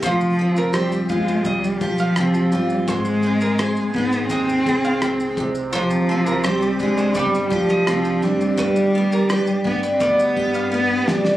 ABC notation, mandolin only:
X:1
M:4/4
L:1/16
Q:1/4=84
K:Fdor
V:1 name="Mandolin"
c z2 B c z2 c e z2 f z4 | c z2 B c z2 c e z2 f z4 | c z2 B c z2 c d z2 e z4 | =B z2 _B =B z2 B d z2 f z4 |]